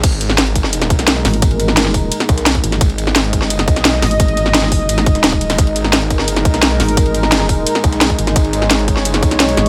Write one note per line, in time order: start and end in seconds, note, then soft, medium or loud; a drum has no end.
0.03 0.89 G#1 loud
0.03 9.69 G#3 medium
0.03 9.69 D#4 medium
0.03 2.80 A#4 medium
0.03 kick loud
0.03 closed hi-hat loud
0.03 crash loud
0.03 ride medium
0.12 ride soft
0.21 closed hi-hat medium
0.21 ride medium
0.30 snare medium
0.38 snare loud
0.38 closed hi-hat medium
0.38 ride medium
0.47 ride soft
0.56 kick medium
0.56 closed hi-hat medium
0.56 ride medium
0.64 snare soft
0.73 closed hi-hat loud
0.73 ride medium
0.82 snare medium
0.82 closed hi-hat soft
0.82 ride soft
0.90 1.24 B1 loud
0.90 kick loud
0.90 closed hi-hat medium
0.90 ride medium
0.99 snare soft
0.99 closed hi-hat soft
1.08 snare loud
1.08 closed hi-hat loud
1.08 ride medium
1.16 snare medium
1.25 2.10 G#1 medium
1.25 snare medium
1.25 closed hi-hat medium
1.25 open hi-hat medium
1.34 closed hi-hat soft
1.34 ride soft
1.42 kick loud
1.42 closed hi-hat loud
1.42 ride medium
1.51 ride soft
1.60 closed hi-hat medium
1.60 ride medium
1.68 snare soft
1.77 snare loud
1.77 closed hi-hat loud
1.77 ride medium
1.86 snare soft
1.94 kick medium
1.94 open hi-hat medium
1.94 ride medium
2.12 closed hi-hat medium
2.12 ride medium
2.20 snare medium
2.20 closed hi-hat soft
2.29 2.62 B1 loud
2.29 kick loud
2.29 closed hi-hat medium
2.29 ride medium
2.38 snare soft
2.38 closed hi-hat soft
2.46 snare loud
2.46 closed hi-hat medium
2.46 ride medium
2.55 kick medium
2.55 ride soft
2.64 2.80 G#1 loud
2.64 closed hi-hat medium
2.64 ride medium
2.72 snare medium
2.72 snare soft
2.72 closed hi-hat soft
2.81 3.41 G#1 loud
2.81 5.57 D#5 medium
2.81 kick loud
2.81 closed hi-hat loud
2.81 ride medium
2.90 ride soft
2.98 closed hi-hat medium
2.98 ride medium
3.07 snare soft
3.16 snare loud
3.16 closed hi-hat medium
3.16 ride medium
3.24 ride soft
3.33 kick medium
3.33 closed hi-hat medium
3.33 ride medium
3.41 3.66 G1 loud
3.41 snare soft
3.50 closed hi-hat medium
3.50 ride medium
3.59 snare medium
3.59 closed hi-hat soft
3.59 ride soft
3.68 4.01 B1 loud
3.68 kick loud
3.68 closed hi-hat medium
3.68 ride medium
3.76 snare soft
3.76 closed hi-hat soft
3.85 snare loud
3.85 closed hi-hat medium
3.85 ride medium
3.94 snare medium
4.02 4.62 G#1 loud
4.02 snare medium
4.02 closed hi-hat medium
4.02 open hi-hat medium
4.11 closed hi-hat soft
4.11 ride soft
4.20 kick loud
4.20 closed hi-hat medium
4.20 ride medium
4.28 ride soft
4.37 closed hi-hat medium
4.37 ride medium
4.46 snare soft
4.54 snare loud
4.54 closed hi-hat medium
4.54 ride medium
4.62 4.88 G1 loud
4.62 snare soft
4.72 kick medium
4.72 open hi-hat medium
4.72 ride medium
4.89 5.22 G#1 loud
4.89 closed hi-hat medium
4.89 ride medium
4.98 snare medium
4.98 closed hi-hat soft
5.06 kick loud
5.06 closed hi-hat medium
5.06 ride medium
5.15 snare soft
5.15 closed hi-hat soft
5.24 5.57 D#1 loud
5.24 snare loud
5.24 closed hi-hat medium
5.24 ride medium
5.32 kick medium
5.41 closed hi-hat medium
5.41 ride medium
5.50 snare loud
5.50 snare soft
5.50 closed hi-hat soft
5.50 ride medium
5.58 6.18 G#1 loud
5.58 8.35 A#4 loud
5.58 kick loud
5.58 closed hi-hat medium
5.58 ride medium
5.67 ride soft
5.76 closed hi-hat medium
5.76 ride medium
5.84 snare soft
5.93 snare loud
5.93 closed hi-hat medium
5.93 ride loud
6.02 ride soft
6.10 kick medium
6.10 closed hi-hat medium
6.10 ride medium
6.18 6.44 G1 loud
6.18 snare soft
6.28 closed hi-hat medium
6.28 ride medium
6.36 snare medium
6.36 closed hi-hat soft
6.36 ride soft
6.45 6.78 B1 medium
6.45 kick loud
6.45 closed hi-hat medium
6.45 ride medium
6.54 snare soft
6.54 closed hi-hat soft
6.62 snare loud
6.62 closed hi-hat medium
6.62 ride medium
6.71 snare medium
6.80 7.65 G#1 loud
6.80 snare medium
6.80 closed hi-hat medium
6.80 open hi-hat medium
6.88 closed hi-hat soft
6.88 ride soft
6.97 kick loud
6.97 closed hi-hat medium
6.97 ride medium
7.06 ride soft
7.14 closed hi-hat medium
7.14 ride medium
7.23 snare soft
7.32 snare loud
7.32 closed hi-hat medium
7.32 ride loud
7.41 snare soft
7.49 kick medium
7.49 open hi-hat medium
7.49 ride medium
7.67 closed hi-hat medium
7.67 ride medium
7.75 snare medium
7.75 closed hi-hat soft
7.84 8.17 B1 loud
7.84 kick loud
7.84 closed hi-hat medium
7.84 ride medium
7.93 snare soft
7.93 closed hi-hat soft
8.01 snare loud
8.01 closed hi-hat medium
8.01 ride medium
8.10 kick medium
8.10 ride soft
8.19 8.35 G#1 loud
8.19 closed hi-hat medium
8.19 ride medium
8.27 snare medium
8.27 snare soft
8.27 closed hi-hat soft
8.36 8.96 G#1 loud
8.36 9.69 C#5 medium
8.36 kick loud
8.36 closed hi-hat loud
8.36 ride medium
8.45 ride soft
8.53 closed hi-hat medium
8.53 ride medium
8.62 snare soft
8.71 snare loud
8.71 closed hi-hat loud
8.71 ride loud
8.79 ride soft
8.88 kick medium
8.88 closed hi-hat medium
8.88 ride medium
8.96 9.21 G1 loud
8.96 snare soft
9.05 closed hi-hat loud
9.05 ride medium
9.14 snare medium
9.14 closed hi-hat soft
9.14 ride soft
9.23 9.56 B1 loud
9.23 kick loud
9.23 closed hi-hat medium
9.23 ride medium
9.31 snare soft
9.31 closed hi-hat soft
9.31 ride soft
9.40 snare loud
9.40 closed hi-hat loud
9.40 ride medium
9.49 ride medium
9.57 9.69 G#1 loud
9.57 snare medium
9.57 closed hi-hat medium